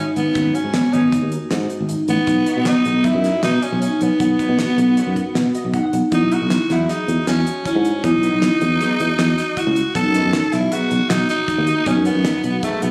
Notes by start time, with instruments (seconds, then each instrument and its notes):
Already playing: vibraphone D#4
0.16 fretless electric bass G#1, tenor saxophone B3, vibraphone D#4, closed hi-hat
0.34 fretless electric bass G#1, hollow-body jazz guitar F#3 B3 C#4, vibraphone D#4, kick, closed hi-hat
0.55 tenor saxophone C#4, vibraphone F#4, closed hi-hat
0.64 fretless electric bass G#2
0.74 vibraphone B3, snare, closed hi-hat
0.93 fretless electric bass G#1, hollow-body jazz guitar F#3 B3 C#4, vibraphone B3, tenor saxophone D#4, closed hi-hat
1.12 vibraphone D#4, kick, closed hi-hat
1.22 fretless electric bass D#2
1.32 vibraphone F#4, closed hi-hat
1.51 fretless electric bass G#2, vibraphone F#4, snare, closed hi-hat
1.70 closed hi-hat
1.80 fretless electric bass G#1
1.89 vibraphone D#4, closed hi-hat
2.08 fretless electric bass A1, tenor saxophone B3, vibraphone D#4, closed hi-hat
2.27 fretless electric bass B1, vibraphone D#4, kick, closed hi-hat
2.46 hollow-body jazz guitar F#3 B3 D#4, closed hi-hat
2.57 fretless electric bass B2
2.65 vibraphone B3, tenor saxophone D#4, snare, closed hi-hat
2.85 fretless electric bass B1, vibraphone B3, closed hi-hat
3.03 hollow-body jazz guitar F#3 B3 D#4, vibraphone D#4, tenor saxophone E4, kick, closed hi-hat
3.15 fretless electric bass F#2
3.24 vibraphone F#4, snare, closed hi-hat
3.43 fretless electric bass B2, tenor saxophone D#4, snare, closed hi-hat
3.62 tenor saxophone C#4, closed hi-hat
3.72 fretless electric bass B1
3.82 tenor saxophone C#4, vibraphone D#4, closed hi-hat
4.01 fretless electric bass B1, tenor saxophone B3, vibraphone D#4, closed hi-hat
4.20 fretless electric bass B1, tenor saxophone B3, vibraphone D#4, kick, closed hi-hat
4.39 hollow-body jazz guitar F#3 B3 D#4, vibraphone F#4, kick, closed hi-hat
4.49 fretless electric bass B2
4.59 vibraphone B3, snare, closed hi-hat
4.78 fretless electric bass B1, vibraphone B3, closed hi-hat
4.97 hollow-body jazz guitar F#3 B3 F#4, vibraphone D#4, closed hi-hat
5.07 fretless electric bass F#2
5.16 vibraphone F#4, kick, closed hi-hat
5.35 fretless electric bass B2, snare, closed hi-hat
5.55 hollow-body jazz guitar D#5, closed hi-hat
5.65 fretless electric bass B1
5.73 vibraphone D#4, hollow-body jazz guitar F#5, kick, closed hi-hat
5.83 hollow-body jazz guitar F#5
5.93 fretless electric bass B1, vibraphone D#4, closed hi-hat
6.11 fretless electric bass E2, hollow-body jazz guitar F#3 B3 D#4, tenor saxophone D#4, vibraphone E4, kick, closed hi-hat
6.23 fretless electric bass B1
6.31 vibraphone D#4, tenor saxophone F#4, closed hi-hat
6.42 fretless electric bass B1
6.50 vibraphone E4, snare, closed hi-hat
6.69 fretless electric bass E2, hollow-body jazz guitar F#3 B3 D#4, tenor saxophone E4, vibraphone F#4, snare, closed hi-hat
6.89 tenor saxophone D#4, vibraphone G#4, snare, closed hi-hat
7.08 fretless electric bass E2, vibraphone F#4, closed hi-hat
7.27 fretless electric bass E2, tenor saxophone C#4, vibraphone F#4, snare, closed hi-hat
7.47 closed hi-hat
7.65 tenor saxophone C#4, vibraphone E4, kick, closed hi-hat
7.75 fretless electric bass G#2
7.85 vibraphone F#4, closed hi-hat
8.04 fretless electric bass E2, tenor saxophone D#4, vibraphone E4, kick, closed hi-hat
8.14 fretless electric bass B1
8.22 hollow-body jazz guitar F#3 B3 D#4, vibraphone D#4, closed hi-hat
8.33 fretless electric bass B1
8.42 vibraphone E4, snare, closed hi-hat
8.61 fretless electric bass E2, closed hi-hat
8.79 hollow-body jazz guitar F#3 B3 D#4, vibraphone G#4, closed hi-hat
8.99 fretless electric bass E2, vibraphone F#4, closed hi-hat
9.19 fretless electric bass E2, vibraphone F#4, snare, closed hi-hat
9.38 snare, closed hi-hat
9.57 vibraphone E4, tenor saxophone F#4, kick, closed hi-hat
9.67 fretless electric bass C#2
9.76 vibraphone F#4, closed hi-hat
9.95 fretless electric bass B1, vibraphone D#4, tenor saxophone A4, kick, closed hi-hat
10.06 fretless electric bass F#2
10.13 hollow-body jazz guitar F#3 B3 D#4, vibraphone C#4, closed hi-hat
10.25 fretless electric bass F#2
10.33 vibraphone D#4, snare, closed hi-hat
10.52 fretless electric bass B1, tenor saxophone E4, vibraphone F#4, snare, closed hi-hat
10.71 hollow-body jazz guitar F#3 B3 D#4, tenor saxophone F#4, vibraphone G#4, closed hi-hat
10.91 fretless electric bass B1, vibraphone F#4, closed hi-hat
11.10 fretless electric bass B1, tenor saxophone D#4, vibraphone F#4, snare, closed hi-hat
11.29 tenor saxophone D#4, snare, closed hi-hat
11.48 vibraphone D#4, kick, closed hi-hat
11.58 fretless electric bass D#2
11.67 vibraphone F#4, closed hi-hat
11.86 fretless electric bass B1, tenor saxophone C#4, vibraphone D#4, kick, closed hi-hat
11.97 fretless electric bass F#2
12.05 tenor saxophone B3, vibraphone C#4, closed hi-hat
12.15 fretless electric bass F#2
12.24 hollow-body jazz guitar F#3 B3 D#4, vibraphone D#4, snare, closed hi-hat
12.44 fretless electric bass B1, vibraphone F#4, closed hi-hat
12.63 hollow-body jazz guitar F#3 B3 D#4, tenor saxophone A3, vibraphone G#4, kick, closed hi-hat
12.82 fretless electric bass B1, tenor saxophone B3, vibraphone F#4, closed hi-hat